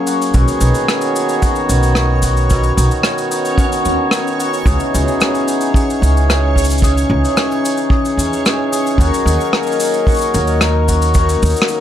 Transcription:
0.00 0.39 F#2 medium
0.00 0.34 F#3 medium
0.00 1.14 F#3 medium
0.00 0.34 A#3 medium
0.00 2.56 A#3 medium
0.00 0.87 C#4 medium
0.00 11.80 C#4 medium
0.00 1.60 G#4 medium
0.00 10.65 C#5 medium
0.00 11.80 C#5 medium
0.07 0.34 F#4 medium
0.07 cabasa medium
0.22 cabasa medium
0.34 0.44 B1 medium
0.34 2.48 B2 medium
0.34 4.67 D#3 medium
0.34 1.41 F#4 medium
0.34 kick loud
0.34 cabasa medium
0.48 5.48 F#4 medium
0.48 cabasa soft
0.54 5.70 B3 medium
0.61 0.71 B1 loud
0.61 1.14 D#4 medium
0.61 cabasa medium
0.75 cabasa soft
0.88 1.68 C#4 medium
0.88 cross-stick medium
0.88 cabasa medium
1.01 cabasa soft
1.15 1.95 D#4 medium
1.15 cabasa medium
1.29 cabasa soft
1.42 2.22 F#4 medium
1.42 kick loud
1.42 cabasa medium
1.55 cabasa soft
1.69 2.72 B1 medium
1.69 3.03 C#4 medium
1.69 cabasa medium
1.83 cabasa soft
1.95 2.76 D#4 medium
1.95 cross-stick medium
1.95 cabasa medium
2.22 2.50 F#4 medium
2.22 kick medium
2.22 cabasa medium
2.37 cabasa soft
2.50 4.72 B2 medium
2.50 3.58 F#4 medium
2.50 kick loud
2.50 cabasa medium
2.63 cabasa soft
2.76 2.88 B1 loud
2.76 3.30 D#4 medium
2.76 cabasa medium
2.91 cabasa soft
3.03 3.85 C#4 medium
3.03 cross-stick medium
3.03 cabasa medium
3.18 cabasa soft
3.31 4.12 D#4 medium
3.31 cabasa medium
3.45 cabasa soft
3.58 4.39 F#4 medium
3.58 kick loud
3.58 cabasa medium
3.72 cabasa soft
3.85 3.96 D#2 medium
3.85 5.20 C#4 medium
3.85 cabasa medium
4.11 4.93 D#4 medium
4.11 cross-stick medium
4.11 cabasa medium
4.27 cabasa soft
4.39 7.64 F#4 medium
4.39 cabasa medium
4.53 cabasa medium
4.66 4.76 C#2 medium
4.66 6.82 C#3 medium
4.66 8.99 E3 medium
4.66 5.74 G#4 medium
4.66 kick loud
4.66 cabasa medium
4.72 11.80 D#4 medium
4.80 cabasa soft
4.90 5.47 D#4 medium
4.90 10.39 G#4 medium
4.95 5.04 C#2 loud
4.95 cabasa medium
5.08 cabasa soft
5.20 6.01 C#4 medium
5.20 cross-stick medium
5.20 cabasa medium
5.35 cabasa soft
5.47 6.28 D#4 medium
5.47 cabasa medium
5.61 cabasa soft
5.74 6.55 G#4 medium
5.74 kick loud
5.74 cabasa medium
5.90 cabasa soft
6.01 7.05 C#2 medium
6.01 7.37 C#4 medium
6.01 cabasa medium
6.17 cabasa soft
6.28 7.09 D#4 medium
6.28 cross-stick medium
6.28 cabasa medium
6.55 6.83 G#4 medium
6.55 kick medium
6.55 cabasa medium
6.64 cabasa medium
6.70 cabasa medium
6.78 cabasa soft
6.82 9.04 C#3 medium
6.82 7.90 G#4 medium
6.82 kick medium
6.82 cabasa medium
6.98 cabasa soft
7.10 7.20 C#2 loud
7.10 7.63 D#4 medium
7.25 cabasa soft
7.37 8.17 C#4 medium
7.37 cross-stick loud
7.37 cabasa medium
7.52 cabasa soft
7.64 8.45 D#4 medium
7.64 cabasa medium
7.77 cabasa soft
7.90 8.72 G#4 medium
7.90 kick loud
8.05 cabasa soft
8.17 8.28 E2 medium
8.17 11.80 C#4 medium
8.17 cabasa medium
8.33 cabasa soft
8.45 9.26 D#4 medium
8.45 cross-stick medium
8.45 cabasa medium
8.72 11.75 G#4 medium
8.72 cabasa medium
8.86 cabasa soft
8.98 9.09 D#2 medium
8.98 11.14 D#3 medium
8.98 11.80 F#3 medium
8.98 10.07 F#4 medium
8.98 kick loud
8.98 cabasa medium
9.14 cabasa soft
9.24 9.36 D#2 medium
9.24 9.80 D#4 medium
9.24 11.80 D#5 medium
9.24 cabasa medium
9.36 11.80 A#4 medium
9.41 cabasa soft
9.53 10.34 A#3 medium
9.53 cross-stick medium
9.53 cabasa soft
9.63 cabasa soft
9.67 cabasa soft
9.72 cabasa soft
9.80 10.61 D#4 medium
9.80 cabasa medium
9.82 cabasa medium
9.85 cabasa soft
9.87 cabasa soft
9.89 cabasa soft
9.91 cabasa soft
9.94 cabasa soft
10.07 10.88 F#4 medium
10.07 kick loud
10.07 cabasa soft
10.09 cabasa soft
10.12 cabasa soft
10.14 cabasa soft
10.16 cabasa soft
10.18 cabasa soft
10.21 cabasa soft
10.34 11.37 D#2 medium
10.34 11.69 A#3 medium
10.34 cabasa medium
10.47 cabasa soft
10.61 11.42 D#4 medium
10.61 cross-stick loud
10.61 cabasa medium
10.88 11.15 F#4 medium
10.88 kick soft
10.88 cabasa medium
11.02 cabasa medium
11.14 11.80 D#3 medium
11.14 11.80 F#4 medium
11.14 kick loud
11.14 cabasa medium
11.29 cabasa soft
11.42 11.53 D#2 loud
11.42 11.80 D#4 medium
11.42 cabasa medium
11.45 cabasa medium
11.47 cabasa soft
11.49 cabasa soft
11.52 cabasa soft
11.54 cabasa soft
11.56 cabasa medium
11.62 cross-stick loud
11.68 11.80 A#3 medium
11.68 cabasa medium

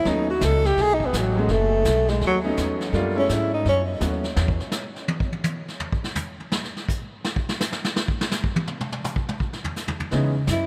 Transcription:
0.05 0.40 D#2 medium
0.05 0.26 F#3 medium
0.05 0.26 A3 medium
0.05 0.26 B3 medium
0.05 0.27 C#4 medium
0.05 0.27 D#4 medium
0.05 0.30 D#4 medium
0.05 brush sweep soft
0.05 kick soft
0.05 snare soft
0.30 0.46 F#4 medium
0.41 0.76 C#2 medium
0.41 0.68 A4 medium
0.41 kick soft
0.41 snare medium
0.41 hi-hat pedal medium
0.64 0.83 G4 medium
0.64 snare soft
0.77 1.12 B1 medium
0.77 brush sweep soft
0.77 kick soft
0.77 snare soft
0.82 0.96 G#4 loud
0.94 1.08 D#4 medium
1.00 kick medium
1.06 1.20 B3 medium
1.13 1.48 A1 medium
1.13 kick soft
1.13 snare medium
1.13 hi-hat pedal medium
1.18 1.38 F#3 medium
1.36 1.48 F#3 medium
1.36 1.53 G#3 medium
1.36 1.48 A3 medium
1.36 1.49 B3 medium
1.36 1.48 C#4 medium
1.36 1.48 F#4 medium
1.48 1.84 F#1 medium
1.48 2.11 A3 loud
1.48 brush sweep soft
1.48 kick soft
1.48 snare soft
1.85 2.20 B1 medium
1.85 kick soft
1.85 snare medium
1.85 hi-hat pedal medium
2.08 2.22 G#3 medium
2.08 snare soft
2.21 2.56 D#2 medium
2.21 brush sweep soft
2.21 kick soft
2.21 snare soft
2.27 2.39 F#3 medium
2.44 2.91 F#3 medium
2.44 2.91 A3 medium
2.44 2.91 B3 medium
2.44 2.91 C#4 medium
2.44 2.91 D#4 medium
2.57 2.92 E2 medium
2.57 kick soft
2.57 snare medium
2.57 hi-hat pedal medium
2.81 snare soft
2.93 3.28 F#2 medium
2.93 3.14 G3 medium
2.93 3.14 A3 medium
2.93 3.14 A#3 medium
2.93 3.14 D4 medium
2.93 3.15 F4 medium
2.93 brush sweep soft
2.93 kick soft
2.93 snare soft
3.15 3.47 F#3 medium
3.15 3.47 G#3 medium
3.15 3.47 A3 medium
3.15 3.48 C#4 medium
3.15 3.35 C#4 medium
3.15 3.48 E4 medium
3.29 3.64 G#2 medium
3.29 kick soft
3.29 snare medium
3.29 hi-hat pedal medium
3.34 3.53 E4 medium
3.54 3.65 D#4 medium
3.65 4.00 F#2 medium
3.65 brush sweep soft
3.65 kick soft
3.65 snare soft
3.69 3.82 C#4 medium
4.00 4.36 D#2 medium
4.00 4.21 F#3 medium
4.00 4.22 A3 soft
4.00 4.22 B3 soft
4.00 4.22 C#4 soft
4.00 4.22 F#4 medium
4.00 kick soft
4.00 snare medium
4.00 hi-hat pedal medium
4.24 snare soft
4.36 4.59 E2 medium
4.36 snare medium
4.48 kick medium
4.60 snare soft
4.71 snare loud
4.71 hi-hat pedal medium
4.96 snare soft
5.08 high tom loud
5.20 kick medium
5.32 high tom soft
5.44 hi-hat pedal medium
5.44 high tom loud
5.68 snare soft
5.80 floor tom medium
5.92 kick medium
6.04 snare soft
6.15 floor tom loud
6.15 hi-hat pedal medium
6.40 floor tom soft
6.52 snare loud
6.64 snare soft
6.77 snare soft
6.89 kick medium
6.89 hi-hat pedal medium
7.24 snare medium
7.36 kick medium
7.49 snare medium
7.60 snare loud
7.60 hi-hat pedal medium
7.72 snare medium
7.84 snare medium
7.96 snare medium
8.08 kick medium
8.21 snare loud
8.31 snare loud
8.31 hi-hat pedal medium
8.44 kick medium
8.56 high tom medium
8.67 mid tom medium
8.81 mid tom medium
8.92 mid tom medium
9.04 hi-hat pedal medium
9.04 mid tom loud
9.16 kick medium
9.29 mid tom medium
9.40 kick medium
9.53 snare soft
9.64 floor tom loud
9.76 snare soft
9.76 hi-hat pedal medium
9.88 floor tom loud
10.00 floor tom medium
10.11 10.47 C#3 medium
10.11 10.32 E3 medium
10.11 10.33 G#3 medium
10.11 10.33 B3 medium
10.11 10.33 C#4 medium
10.11 10.33 D#4 medium
10.11 brush sweep soft
10.11 kick soft
10.11 snare soft
10.47 10.66 F#2 medium
10.47 kick soft
10.47 snare medium
10.47 hi-hat pedal medium
10.52 10.66 E4 medium

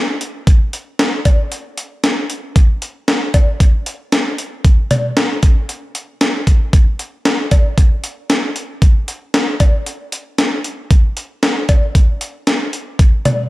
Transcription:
0.21 closed hi-hat medium
0.47 kick loud
0.47 closed hi-hat medium
0.73 closed hi-hat medium
0.99 snare loud
0.99 closed hi-hat medium
1.25 kick loud
1.25 closed hi-hat medium
1.25 cowbell medium
1.52 closed hi-hat medium
1.78 closed hi-hat medium
2.04 snare loud
2.04 closed hi-hat medium
2.30 closed hi-hat medium
2.56 kick loud
2.56 closed hi-hat medium
2.82 closed hi-hat medium
3.08 snare loud
3.08 closed hi-hat medium
3.34 kick loud
3.34 closed hi-hat medium
3.34 cowbell medium
3.60 kick medium
3.60 closed hi-hat medium
3.86 closed hi-hat medium
4.12 snare loud
4.12 closed hi-hat medium
4.38 closed hi-hat medium
4.65 kick loud
4.65 closed hi-hat medium
4.91 closed hi-hat medium
4.91 mid tom loud
4.91 cowbell medium
5.17 snare loud
5.17 closed hi-hat medium
5.43 kick loud
5.43 closed hi-hat medium
5.69 closed hi-hat medium
5.95 closed hi-hat medium
6.21 snare loud
6.21 closed hi-hat medium
6.47 kick medium
6.47 closed hi-hat medium
6.73 kick loud
6.73 closed hi-hat medium
6.99 closed hi-hat medium
7.25 snare loud
7.25 closed hi-hat medium
7.51 kick loud
7.51 closed hi-hat medium
7.51 cowbell medium
7.78 kick medium
7.78 closed hi-hat medium
8.04 closed hi-hat medium
8.30 snare loud
8.30 closed hi-hat medium
8.56 closed hi-hat medium
8.82 kick loud
8.82 closed hi-hat medium
9.08 closed hi-hat medium
9.34 snare loud
9.34 closed hi-hat medium
9.60 kick loud
9.60 closed hi-hat medium
9.60 cowbell medium
9.86 closed hi-hat medium
10.12 closed hi-hat medium
10.38 snare loud
10.38 closed hi-hat medium
10.64 closed hi-hat medium
10.91 kick loud
10.91 closed hi-hat medium
11.17 closed hi-hat medium
11.43 snare loud
11.43 closed hi-hat medium
11.69 kick loud
11.69 closed hi-hat medium
11.69 cowbell medium
11.95 kick medium
11.95 closed hi-hat medium
12.21 closed hi-hat medium
12.47 snare loud
12.47 closed hi-hat medium
12.73 closed hi-hat medium
12.99 kick loud
12.99 closed hi-hat medium
13.25 closed hi-hat medium
13.25 mid tom loud
13.25 cowbell medium

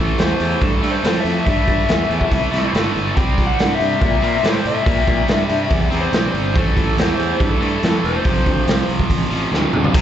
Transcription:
0.00 0.10 A1 medium
0.00 0.81 A2 medium
0.00 0.84 E3 medium
0.00 0.81 A3 medium
0.00 0.16 A4 medium
0.18 0.32 E2 medium
0.18 0.58 C5 medium
0.18 snare medium
0.18 open hi-hat medium
0.40 0.53 E2 medium
0.40 open hi-hat soft
0.62 0.75 G2 medium
0.62 0.91 A4 medium
0.62 kick medium
0.62 open hi-hat medium
0.82 0.95 G2 medium
0.82 1.02 A2 medium
0.82 1.05 E3 medium
0.82 1.02 A3 medium
0.82 open hi-hat soft
0.90 1.19 C5 medium
1.03 1.16 F2 medium
1.03 1.45 A2 medium
1.03 1.48 E3 medium
1.03 snare medium
1.03 open hi-hat medium
1.07 1.47 A3 medium
1.20 1.45 E5 medium
1.24 1.38 F2 medium
1.24 open hi-hat soft
1.46 1.59 G2 medium
1.46 2.51 A2 medium
1.46 2.53 E3 medium
1.46 2.50 A3 medium
1.46 2.71 E5 medium
1.46 kick medium
1.46 open hi-hat medium
1.68 1.81 G2 medium
1.68 kick medium
1.68 open hi-hat soft
1.89 2.02 E2 medium
1.89 snare medium
1.89 open hi-hat medium
2.10 2.23 E2 medium
2.10 open hi-hat soft
2.21 kick medium
2.31 2.45 C2 medium
2.31 kick medium
2.31 open hi-hat medium
2.51 2.66 C2 medium
2.51 2.72 A2 medium
2.51 2.74 E3 medium
2.51 2.72 A3 medium
2.51 snare soft
2.51 open hi-hat soft
2.73 2.87 G1 medium
2.73 3.15 A2 medium
2.73 3.17 E3 medium
2.73 3.16 A3 medium
2.73 snare medium
2.73 open hi-hat medium
2.95 3.08 G1 medium
2.95 open hi-hat soft
3.15 3.30 C2 medium
3.15 4.21 C3 medium
3.15 4.22 G3 medium
3.15 4.21 C4 medium
3.15 3.46 G5 medium
3.15 kick loud
3.15 open hi-hat medium
3.38 3.51 C2 medium
3.38 kick medium
3.38 open hi-hat soft
3.46 3.74 F#5 medium
3.59 3.72 G2 medium
3.59 snare medium
3.59 open hi-hat medium
3.75 4.03 E5 medium
3.80 3.93 G2 medium
3.80 open hi-hat soft
4.01 4.14 A#2 medium
4.01 4.46 E5 medium
4.01 kick loud
4.01 open hi-hat medium
4.21 4.36 A#2 medium
4.21 4.43 G3 medium
4.21 4.46 C4 medium
4.21 open hi-hat soft
4.26 4.41 C3 medium
4.43 4.56 A2 medium
4.43 4.83 C3 medium
4.43 4.85 G3 medium
4.43 4.88 C4 medium
4.43 snare loud
4.43 open hi-hat medium
4.47 4.67 C5 medium
4.65 4.78 A2 medium
4.65 5.89 E5 medium
4.65 open hi-hat soft
4.84 4.99 A#2 medium
4.84 5.90 C3 medium
4.84 5.91 G3 medium
4.84 5.90 C4 medium
4.84 kick loud
4.84 open hi-hat medium
5.07 5.21 A#2 medium
5.07 kick medium
5.07 open hi-hat soft
5.28 5.42 G2 medium
5.28 snare medium
5.28 open hi-hat medium
5.49 5.63 G2 medium
5.49 open hi-hat soft
5.70 5.84 E2 medium
5.70 kick medium
5.70 open hi-hat medium
5.90 6.05 E2 medium
5.90 6.11 C3 medium
5.90 6.12 G3 medium
5.90 6.16 C4 medium
5.90 open hi-hat soft
6.00 6.26 C5 medium
6.12 6.26 A#1 medium
6.12 6.53 C3 medium
6.12 6.55 G3 medium
6.12 6.57 C4 medium
6.12 snare medium
6.12 open hi-hat medium
6.30 6.58 C5 medium
6.34 6.56 G1 medium
6.34 open hi-hat soft
6.54 6.69 A1 medium
6.54 7.59 A2 medium
6.54 7.60 E3 medium
6.54 7.59 A3 medium
6.54 kick loud
6.54 open hi-hat medium
6.58 7.01 A4 medium
6.77 6.90 A1 medium
6.77 kick medium
6.77 open hi-hat soft
6.97 7.11 E2 medium
6.97 7.43 C5 medium
6.97 snare medium
6.97 open hi-hat medium
7.18 7.32 E2 medium
7.18 open hi-hat soft
7.40 7.53 G2 medium
7.40 8.06 A4 medium
7.40 kick medium
7.40 open hi-hat medium
7.60 7.75 G2 medium
7.60 7.80 A2 medium
7.60 7.82 E3 medium
7.60 7.81 A3 medium
7.60 open hi-hat soft
7.81 7.96 F2 medium
7.81 8.23 A2 medium
7.81 8.24 E3 medium
7.81 8.25 A3 medium
7.81 snare loud
7.81 open hi-hat medium
8.04 8.17 E1 medium
8.04 8.85 C5 medium
8.04 open hi-hat soft
8.23 8.38 F1 medium
8.23 9.29 F2 medium
8.23 9.30 C3 medium
8.23 9.29 F3 medium
8.23 kick loud
8.23 open hi-hat medium
8.46 8.59 D2 medium
8.46 kick medium
8.46 open hi-hat soft
8.68 8.81 C2 medium
8.68 snare medium
8.68 open hi-hat medium
8.88 9.02 C2 medium
8.88 open hi-hat soft
8.99 kick medium
9.10 9.23 A1 medium
9.10 kick medium
9.10 open hi-hat medium
9.30 9.44 A1 medium
9.30 9.50 F2 medium
9.30 9.51 C3 medium
9.30 9.50 F3 medium
9.30 open hi-hat soft
9.51 9.65 D2 medium
9.51 9.93 F2 medium
9.51 9.92 C3 medium
9.51 9.94 F3 medium
9.51 snare medium
9.73 9.86 D2 medium
9.73 mid tom medium
9.84 floor tom medium
9.94 10.02 C2 medium
9.94 10.02 C3 loud
9.94 kick loud
9.94 crash loud

